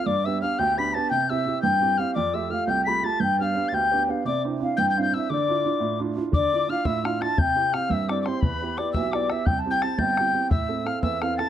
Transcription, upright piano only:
X:1
M:6/8
L:1/8
Q:3/8=115
K:C
V:1 name="Upright piano"
G,, [B,DG] [B,DG] D,, [B,DG] [B,DG] | C, [CEG] [CEG] G,, [CEG] [CEG] | F,, [A,FG] [A,FG] C,, [A,FG] [A,FG] | G,, [B,DG] [B,DG] D,, [B,DG] [B,DG] |
C, [CDE] [CDE] G,, [CDE] [CDE] | D, [DEF] [DEF] A,, [DEF] [DEF] | D, [DEF] [DEF] A,, [DEF] [DEF] | C, [CEG] [CEG] G,, [CEG] [CEG] |
E,, [B,EG] [B,EG] B,,, [B,EG] [B,EG] | C,, [CEG] [CEG] G,,, [CEG] [CEG] | A,, [CEA] [CEA] E,, [CEA] [CEA] |]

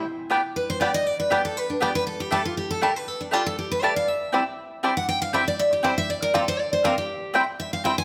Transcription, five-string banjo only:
X:1
M:4/4
L:1/8
Q:1/4=239
K:C
V:1 name="Five-string banjo"
z2 [G,B,D] z3 [G,B,D] z | z2 [G,B,D] z3 [G,B,D] z | z2 [G,D] z3 [G,D] z | z2 [G,D] z3 [G,D] z |
z2 [G,CD] z3 [G,CD] z | z2 [G,CD] z3 [G,CD] z | z2 [_B,CD] z3 [B,CD] z | z2 [G,CE] z3 [G,CE] z |]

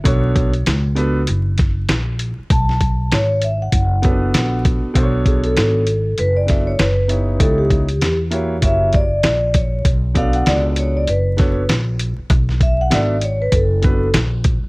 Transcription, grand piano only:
X:1
M:4/4
L:1/8
Q:"Swing 16ths" 1/4=98
K:F#m
V:1 name="Grand piano"
[B,DFAc] z2 [B,DFAB] z4 | z4 z [B,CDFAB]3 | [B,DFA=c^c]3 z2 [B,DFAe] z [B,^DE=Gc] | [B,^DE=Gc] z2 [^A,EFGc] [A,EFGc] z3 |
z [B,CDFAd]3 z [B,DFAc] z2 | z2 [B,DFAe] z2 [B,DFAB] z2 |]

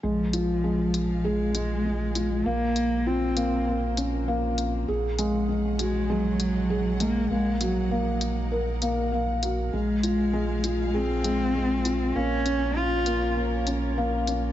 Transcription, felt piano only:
X:1
M:4/4
L:1/8
Q:1/4=99
K:Bbm
V:1 name="Felt piano"
A, F A, z A A, A, F | B, z F B, B, D B, z | A A, A, G A, z A A, | B, G B, z B B, B, G |
A, F A, F A A, A, F | B, D F B, B, D B, D |]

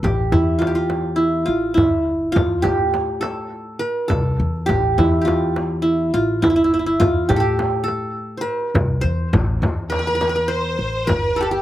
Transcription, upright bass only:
X:1
M:4/4
L:1/8
Q:1/4=103
K:none
V:1 name="Upright bass" clef=bass
A,,, E,,4 A,,, G,,,2 | E,, A,,4 z C,, E,, | A,,, E,,4 A,,, G,,,2 | E,, A,,4 z C,, E,, |
A,,, E,,4 A,,, G,,,2 |]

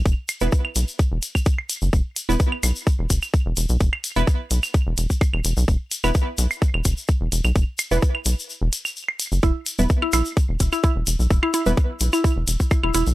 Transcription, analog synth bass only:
X:1
M:4/4
L:1/16
Q:1/4=128
K:Clyd
V:1 name="Analog synth bass" clef=bass
E,,, z2 E,,, z2 B,,, z2 E,,, z4 z F,,, | E,,, z2 E,,, z2 B,,, z2 E,,, E,,, z2 E,,, E,,, B,,, | E,,, z2 E,,, z2 B,,, z2 E,,, E,,, z2 E,,, E,,, B,,, | E,,, z2 E,,, z2 B,,, z2 E,,, E,,, z2 E,,, E,,, B,,, |
E,,, z2 E,,, z2 B,,, z2 E,,, z4 z F,,, | E,,, z2 E,,, z2 B,,, z2 E,,, E,,, z2 E,,, E,,, B,,, | E,,, z2 E,,, z2 B,,, z2 E,,, E,,, z2 E,,, E,,, B,,, |]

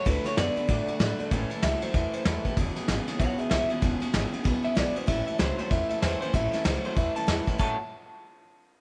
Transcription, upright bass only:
X:1
M:4/4
L:1/8
Q:"Swing" 1/4=191
K:A
V:1 name="Upright bass" clef=bass
D,, z F,, z A,, z A,, z | A,,, z C,, z E,, z E,, z | E,,, z G,,, z B,,, z B,,, z | E,,, z G,,, z B,,, z B,,, z |
A,,, z C,, z E,, z E,, z | A,,, z C,, z E,, z E,, z | A,,, z6 z |]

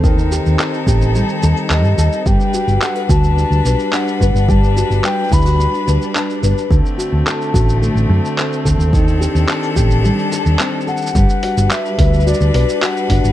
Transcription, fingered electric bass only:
X:1
M:4/4
L:1/16
Q:1/4=108
K:G
V:1 name="Fingered electric bass" clef=bass
_E,,2 z E,, z2 A,,,2 z2 E,, z E,, G,, E,, z | G,,, z2 G,,, z2 D,,2 z D,, B,,, z3 G,,, G,,,- | G,,,2 z G,,, z2 D,,2 z2 D,, z3 G,,, z | D,, z2 D,, z2 A,,,2 z A,,, F,, z3 D,, _E,,- |
_E,,2 z E,, z2 A,,,2 z3 E,, z4 | G,,, z2 G,,, z2 D,,2 z D,, B,,, z3 G,,, G,,, |]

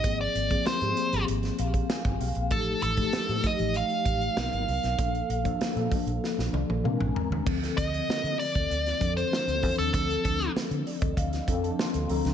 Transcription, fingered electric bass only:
X:1
M:4/4
L:1/16
Q:1/4=97
K:Dphr
V:1 name="Fingered electric bass" clef=bass
_A,,,2 A,,,2 z _A,, z A,,, A,,,2 B,,,2 z G,,, _C,, B,,, | A,,,2 A,,,2 z A,, z A,,,2 z A,,,2 =B,,, _A,,, C,, B,,, | B,,,2 B,,,2 z B,, z B,,, z B,,, C,, B,,, B,, B,,, z E,, | D,,2 D,,2 z D, z D,, D,,2 F,,2 z D,, =E,, _E,, |
D,,2 D,,2 z D, z D,, D,,2 F,,2 z D,, D,, _D,, |]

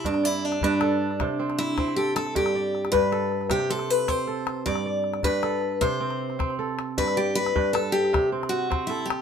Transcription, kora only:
X:1
M:12/8
L:1/8
Q:3/8=104
K:G
V:1 name="Kora"
A d2 B A3 C3 A2- | A d2 B A3 C3 A2- | A d2 B A3 C3 A2- | A d2 B A3 C3 A2 |]
V:2 name="Kora" clef=bass
G,,2 z G,,2 z C,2 z C2 z | G,,2 z G,,2 z C,2 z C2 z | G,,2 z G,,2 z C,2 z C2 z | G,,2 z G,,2 z C,2 z C2 z |]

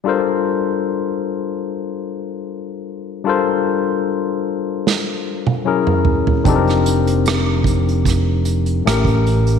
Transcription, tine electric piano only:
X:1
M:4/4
L:1/8
Q:"Swing 16ths" 1/4=75
K:Gm
V:1 name="Tine electric piano"
[G,DFABc]8 | [G,DFABc]6 [^F,^C=E^G^A]2 | [F,CDEGAB]6 [A,,A,^CGB]2 |]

